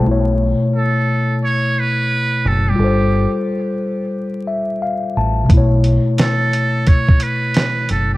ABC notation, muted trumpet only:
X:1
M:4/4
L:1/16
Q:"Swing 16ths" 1/4=88
K:Glyd
V:1 name="Muted trumpet"
z4 A4 c2 B4 A G- | G3 z12 z | z4 A4 c2 B4 A G |]